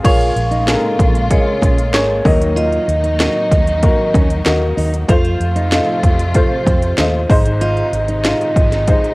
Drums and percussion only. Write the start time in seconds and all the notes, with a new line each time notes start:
0.05 kick, closed hi-hat, crash
0.21 closed hi-hat
0.37 closed hi-hat
0.52 closed hi-hat
0.68 snare, closed hi-hat
0.99 kick, closed hi-hat
1.15 closed hi-hat
1.31 kick, closed hi-hat
1.62 kick, closed hi-hat
1.78 closed hi-hat
1.94 snare, closed hi-hat
2.25 kick, open hi-hat
2.42 closed hi-hat
2.57 closed hi-hat
2.73 closed hi-hat
2.89 closed hi-hat
3.04 closed hi-hat
3.20 snare, closed hi-hat
3.51 kick, closed hi-hat
3.67 closed hi-hat
3.83 kick, closed hi-hat
4.14 kick, closed hi-hat
4.30 closed hi-hat
4.46 snare, closed hi-hat
4.78 open hi-hat
4.94 closed hi-hat
5.09 kick, closed hi-hat
5.25 closed hi-hat
5.41 closed hi-hat
5.56 closed hi-hat
5.72 snare, closed hi-hat
6.03 kick, closed hi-hat
6.19 closed hi-hat
6.34 kick, closed hi-hat
6.67 kick, closed hi-hat
6.82 closed hi-hat
6.98 snare, closed hi-hat
7.30 kick, open hi-hat
7.46 closed hi-hat
7.61 closed hi-hat
7.77 closed hi-hat
7.93 closed hi-hat
8.08 closed hi-hat
8.25 snare, closed hi-hat
8.41 closed hi-hat
8.56 kick, closed hi-hat
8.72 snare, closed hi-hat
8.87 kick, closed hi-hat
9.04 closed hi-hat